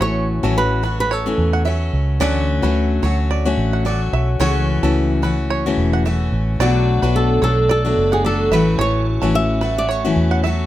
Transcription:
Already playing: steel-string acoustic guitar A2 E3 F#3 A3 C#4 F#4
0.01 fingered electric bass A1, five-string banjo C#5, nylon-string guitar C#5
0.43 fingered electric bass A1, steel-string acoustic guitar A2 E3 F#3 A3 C#4 F#4, five-string banjo A4
0.58 nylon-string guitar B4
0.83 steel-string acoustic guitar F#3 A3 C#4 F#4, five-string banjo B4
1.00 nylon-string guitar B4
1.11 nylon-string guitar A4, five-string banjo C#5
1.26 steel-string acoustic guitar A2 E3 F#3 A3 C#4 F#4
1.38 fingered electric bass E2
1.53 five-string banjo F#5
1.65 steel-string acoustic guitar F#3 A3 C#4 F#4, five-string banjo E5
1.93 fingered electric bass C#2
2.20 fingered electric bass D2, steel-string acoustic guitar D3 F#3 A3 C#4 F#4, five-string banjo D5
2.62 fingered electric bass D2, steel-string acoustic guitar D3 F#3 A3 C#4 F#4, five-string banjo B4
3.03 fingered electric bass D2, steel-string acoustic guitar F#3 A3 C#4 F#4, five-string banjo C#5
3.31 five-string banjo D5
3.45 steel-string acoustic guitar D3 F#3 A3 C#4 F#4
3.57 fingered electric bass A1
3.73 five-string banjo F#5
3.85 steel-string acoustic guitar F#3 A3 C#4 F#4, five-string banjo D5
4.13 fingered electric bass B1, five-string banjo E5
4.40 fingered electric bass C#2, steel-string acoustic guitar C#3 E3 A3 C#4 F#4, five-string banjo C#5
4.83 fingered electric bass C#2, steel-string acoustic guitar C#3 E3 A3 C#4 F#4, five-string banjo A4
5.22 steel-string acoustic guitar E3 A3 C#4 F#4, five-string banjo B4
5.50 five-string banjo C#5
5.66 steel-string acoustic guitar C#3 E3 A3 C#4 F#4
5.77 fingered electric bass E1
5.93 five-string banjo F#5
6.05 steel-string acoustic guitar E3 A3 C#4 F#4, five-string banjo E5
6.32 fingered electric bass A1
6.60 fingered electric bass B1, steel-string acoustic guitar B2 F#3 A3 D4 F#4, tonewheel organ A3 B3 D4, nylon-string guitar F#4, five-string banjo D5
7.02 fingered electric bass B1, steel-string acoustic guitar B2 F#3 A3 D4 F#4, five-string banjo B4
7.16 nylon-string guitar A4
7.42 fingered electric bass B1, steel-string acoustic guitar F#3 A3 D4 F#4, nylon-string guitar A4, five-string banjo C#5
7.69 nylon-string guitar A4, five-string banjo D5
7.85 steel-string acoustic guitar B2 F#3 A3 D4 F#4
7.97 fingered electric bass F#1
8.12 nylon-string guitar G#4, five-string banjo F#5
8.24 steel-string acoustic guitar F#3 A3 D4 F#4, nylon-string guitar A4, five-string banjo D5
8.51 fingered electric bass A1, steel-string acoustic guitar A2 E3 F#3 A3 C#4 F#4, tonewheel organ A3 C#4 F#4, nylon-string guitar B4, five-string banjo E5
8.79 fingered electric bass A1, five-string banjo C#5, nylon-string guitar C#5
9.22 fingered electric bass A1, steel-string acoustic guitar A2 E3 F#3 A3 C#4 F#4, five-string banjo A4
9.35 nylon-string guitar E5
9.61 steel-string acoustic guitar F#3 A3 C#4 F#4, five-string banjo B4
9.78 nylon-string guitar D5
9.89 five-string banjo C#5, nylon-string guitar C#5
10.05 steel-string acoustic guitar A2 E3 F#3 A3 C#4 F#4
10.16 fingered electric bass E2
10.31 five-string banjo F#5
10.44 steel-string acoustic guitar F#3 A3 C#4 F#4, five-string banjo E5

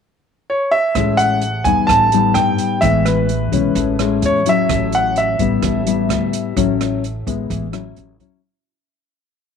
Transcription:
0.50 grand piano C#5
0.71 grand piano E5
0.95 upright bass A1, nylon-string guitar A2 G#3 C#4 E4, kick, cross-stick, closed hi-hat
1.17 grand piano F#5, closed hi-hat
1.42 closed hi-hat
1.64 upright bass E2, nylon-string guitar G3 B3 D#4, grand piano G#5, kick, closed hi-hat
1.87 upright bass A1, nylon-string guitar A2, grand piano A5, kick, cross-stick, closed hi-hat
2.12 nylon-string guitar G3 B3 D#4, closed hi-hat
2.34 upright bass G2, grand piano G5, cross-stick, closed hi-hat
2.58 closed hi-hat
2.81 upright bass A1, nylon-string guitar E3 G#3 B3 E4, grand piano E5, kick, closed hi-hat
3.05 grand piano B4, cross-stick, closed hi-hat
3.29 closed hi-hat
3.52 upright bass B1, nylon-string guitar G#3 C#4 E4, kick, closed hi-hat
3.75 upright bass A1, nylon-string guitar A2, kick, closed hi-hat
3.99 nylon-string guitar G#3 C#4 E4, cross-stick, closed hi-hat
4.22 upright bass E2, grand piano C#5, closed hi-hat
4.46 nylon-string guitar F#3 C#4 E4, grand piano E5, closed hi-hat
4.69 upright bass A1, nylon-string guitar A2, kick, cross-stick, closed hi-hat
4.92 grand piano F#5, closed hi-hat
5.16 grand piano E5, closed hi-hat
5.39 upright bass A1, nylon-string guitar G3 B3 E4, kick, closed hi-hat
5.62 upright bass A1, nylon-string guitar A2, kick, cross-stick, closed hi-hat
5.86 nylon-string guitar G3 B3 E4, closed hi-hat
6.09 upright bass D2, cross-stick, closed hi-hat
6.33 closed hi-hat
6.56 upright bass A1, nylon-string guitar A2 F#3 C#4 E4, kick, closed hi-hat
6.81 cross-stick, closed hi-hat
7.04 closed hi-hat
7.26 upright bass A1, nylon-string guitar G#3 B3 E4, kick, closed hi-hat
7.50 upright bass A1, nylon-string guitar E3, kick, closed hi-hat
7.72 nylon-string guitar F#3 C#4 E4, cross-stick, closed hi-hat
7.96 upright bass A1, closed hi-hat
8.20 nylon-string guitar F#3 C#4 E4, kick, closed hi-hat

